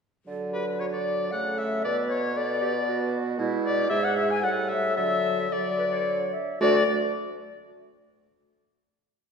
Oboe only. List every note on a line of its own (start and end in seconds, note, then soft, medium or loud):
0.53 0.65 B4 soft
0.80 0.86 C#5 soft
0.93 1.31 D5 medium
1.32 1.60 F#5 medium
1.58 1.84 E5 medium
1.84 1.96 D5 medium
2.10 2.39 C#5 medium
2.37 3.13 D5 medium
3.65 3.89 D5 medium
3.90 4.06 E5 medium
4.05 4.16 F#5 medium
4.17 4.32 E5 medium
4.30 4.45 G#5 medium
4.43 4.70 F#5 medium
4.69 4.96 E5 medium
4.97 5.53 E5 medium
5.52 6.34 D5 medium
6.61 6.83 D5 medium